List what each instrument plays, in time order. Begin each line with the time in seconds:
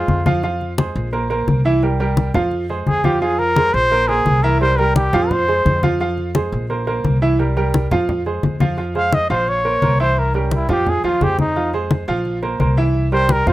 Already playing: grand piano G#3 G#4 C5, trumpet F4
0.08 upright bass F2, high conga
0.26 grand piano F3 F4 F5, high conga
0.43 grand piano F3 F4 F5, high conga
0.61 high conga
0.78 grand piano G#3 G#4 C5, high conga
0.95 upright bass A#1, high conga
1.13 grand piano A#3 A#4 C5, high conga
1.30 grand piano A#3 A#4 C5, high conga
1.47 upright bass C2, high conga
1.65 grand piano E3 E4 E5, high conga
1.83 grand piano G3 G4 A#4, high conga
2.00 grand piano G3 G4 A#4, high conga
2.17 high conga
2.34 upright bass F2, grand piano F3 F4 F5, high conga, low conga
2.51 high conga
2.69 grand piano G#3 G#4 C5, high conga
2.87 upright bass F2, trumpet G#4, high conga
3.04 grand piano F3 F4 F5, trumpet G4, high conga
3.22 grand piano F3 F4 F5, trumpet G#4, high conga
3.39 trumpet A#4, high conga
3.56 grand piano G#3 G#4 C5, high conga
3.74 upright bass A#1, trumpet C5, high conga
3.91 grand piano A#3 A#4 C5, high conga
4.08 grand piano A#3 A#4 C5, trumpet G#4, high conga
4.26 upright bass C2, high conga
4.43 grand piano E3 E4 E5, trumpet A#4, high conga
4.61 grand piano G3 G4 A#4, trumpet C5, high conga
4.78 grand piano G3 G4 A#4, trumpet A#4, high conga
4.96 trumpet G4, high conga
5.13 upright bass F2, grand piano F3 F4 F5, high conga, low conga
5.30 trumpet C5, high conga, low conga
5.48 grand piano G#3 G#4 C5, high conga
5.66 upright bass F2, high conga
5.83 grand piano F3 F4 F5, high conga
6.00 grand piano F3 F4 F5, high conga
6.18 high conga
6.35 grand piano G#3 G#4 C5, high conga
6.52 upright bass A#1, high conga
6.70 grand piano A#3 A#4 C5, high conga
6.87 grand piano A#3 A#4 C5, high conga
7.04 upright bass C2, high conga
7.22 grand piano E3 E4 E5, high conga
7.39 grand piano G3 G4 A#4, high conga
7.57 grand piano G3 G4 A#4, high conga
7.74 high conga
7.91 upright bass F2, grand piano F3 F4 F5, high conga, low conga
8.09 high conga, low conga
8.26 grand piano G#3 G#4 C5, high conga
8.43 upright bass F2, high conga
8.60 grand piano F3 F4 F5, high conga
8.78 grand piano F3 F4 F5, high conga
8.95 grand piano G#3 G#4 C5, trumpet F5, high conga
9.13 trumpet D#5, high conga
9.30 upright bass A#1, grand piano F3 F4 F5, trumpet C5, high conga
9.48 trumpet C#5, high conga
9.65 grand piano A#3 A#4 C5, high conga
9.82 upright bass C2, grand piano A#3 A#4 C5, high conga
9.99 grand piano E3 E4 E5, trumpet C5, high conga
10.17 trumpet A#4, high conga
10.34 grand piano G3 G4 A#4, trumpet C#4, high conga
10.51 trumpet E4, high conga
10.69 upright bass F2, grand piano F3 F4 F5, trumpet G4, high conga, low conga
10.86 trumpet G#4, high conga, low conga
11.04 upright bass D#2, grand piano F3 F4 F5, trumpet F4, high conga
11.21 upright bass F2, grand piano G#3 G#4 C5, trumpet G4, high conga
11.39 trumpet D#4, high conga
11.56 grand piano F3 F4 F5, high conga
11.73 grand piano G#3 G#4 C5, high conga
11.91 high conga
12.08 upright bass A#1, grand piano F3 F4 F5, high conga
12.25 high conga
12.43 grand piano A#3 A#4 C5, high conga
12.60 upright bass C2, grand piano A#3 A#4 C5, high conga
12.77 grand piano E3 E4 E5, high conga
12.94 high conga
13.12 grand piano G3 G4 A#4, trumpet C5, high conga
13.29 trumpet A#4, high conga
13.46 upright bass F2, grand piano F3 F4 F5, trumpet C5, high conga, low conga